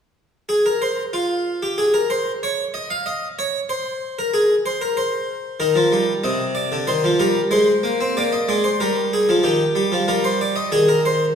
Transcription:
0.49 G#4
0.66 A#4
0.82 C5
1.13 F4
1.63 G4
1.78 G#4
1.94 A#4
2.10 C5
2.43 C#5
2.74 D#5
2.90 F5
3.06 D#5
3.39 C#5
3.69 C5
4.19 A#4
4.34 G#4
4.66 C5
4.82 A#4
4.97 C5
5.60 D#3 A#4
5.76 F3
5.92 G3
6.24 C3 D#5
6.55 D5
6.72 D3
6.87 D#3 C5
7.04 F3
7.20 G3 A#4
7.51 G#3 C5
7.83 A#3
8.01 C4
8.17 A#3 D5
8.32 D#5
8.48 G#3 D5
8.64 C5
8.80 G3 A#4
9.13 G#4
9.29 F3
9.43 D#3 G4
9.75 G3
9.92 F3
10.08 G3 A#4
10.24 C5
10.41 D5
10.56 D#5
10.72 D#3 G#4
10.88 A#4
11.05 C5

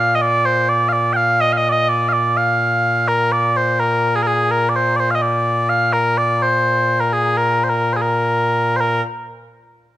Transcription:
Already playing: A#2 F5
0.15 D#5
0.21 D5
0.45 C5
0.69 D5
0.89 D5 F5
1.13 F5 G5
1.41 D#5
1.53 F5
1.57 D#5
1.69 D5 D#5
1.89 D5
2.09 F5
2.13 D5
2.37 F5
3.08 A#4
3.32 D5
3.57 C5
3.80 A#4
4.16 G#4
4.23 A#4
4.27 G#4
4.51 A#4
4.69 D5
4.76 C5
4.96 C5 D5
5.11 F5
5.15 D#5
5.22 D5
5.69 F5
5.93 A#4
6.18 D5
6.42 C5
7.00 A#4
7.13 G#4
7.37 A#4
7.64 C5
7.70 A#4
7.93 G#4 C5
8.02 A#4
8.77 A#4 C5

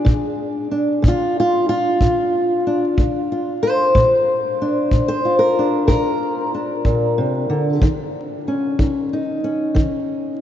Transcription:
Already playing: D4 G#4
0.05 A#2, kick
0.71 D4
1.02 A#2, kick
1.08 F4
1.40 F4
1.69 F4
2.01 A#2, kick
2.67 D4
2.98 A#2, kick
3.32 F4
3.63 C5
3.95 A#2, kick
4.62 D4
4.91 A#2, kick
5.08 C5
5.25 F4
5.39 A#4
5.59 D4
5.88 A#2 A#4, kick
6.54 D4
6.85 A#2, kick
7.18 C3
7.50 D3
7.82 D#3, kick
8.48 C#4
8.79 D#3, kick
9.13 D#4
9.44 C#4
9.75 D#3, kick

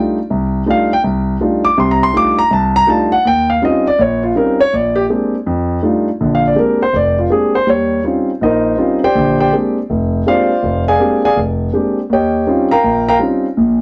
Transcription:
Already playing: G3 A3 D4 D#4 F4
0.30 C2
0.66 G3 A3 D4 D#4 F4
0.71 F5
0.93 G5
1.04 C2
1.41 G3 A3 D4 D#4 F4
1.65 D6
1.77 C2 C3 C6
1.91 A#5
2.03 C6
2.13 G3 A3 D4 D#4 F4 D6
2.39 A#5
2.51 C2 A5
2.76 A#5
2.87 G3 A3 D4 D#4 F4 A5
3.12 F#5
3.25 D#2 G5
3.50 F5
3.62 G3 C4 C#4 D#4 F4 D#5
3.87 D5
3.99 A#1 C#5
4.23 F4
4.35 G3 C4 C#4 D#4 F4 A#4
4.61 C#5
4.73 A#1 D5
4.96 G4
5.10 G#3 A#3 C4 D4 G4
5.47 F2
5.83 G3 A3 D4 D#4 F4
6.21 A#1 D3
6.35 F5
6.48 D5
6.55 G#3 A#3 C4 D4 G4 A#4
6.83 C5
6.93 F1 D5
7.19 F4
7.30 G#3 A#3 C4 D4 G4 G#4
7.55 C5
7.66 D#2 G3 C#5
8.04 G3 C4 C#4 D#4 F4
8.41 A#1 D#4 A#4 C5 D#5
8.78 G3 C4 C#4 D#4 F4
9.04 G4 C5 D5 G5
9.15 A#1 D3
9.40 G4 C5 D5 G5
9.53 G#3 A#3 C4 D4 G4
9.90 F1
10.26 G#3 A#3 C4 D4 F4 G4 C5 D5 F5
10.63 F1
10.88 G#4 D5 F5 G#5
11.00 G#3 A#3 C4 D4 G4
11.25 G#4 D5 F5 G#5
11.36 F1
11.73 G#3 A#3 C4 D4 G4
12.10 D#2 G4 C#5 D#5 G5
12.47 G3 C4 C#4 D#4 F4
12.71 A#4 F5 G5 A#5
12.84 A#1
13.08 A#4 F5 G5 A#5
13.19 G3 C4 C#4 D#4 F4
13.57 A#1 A#2

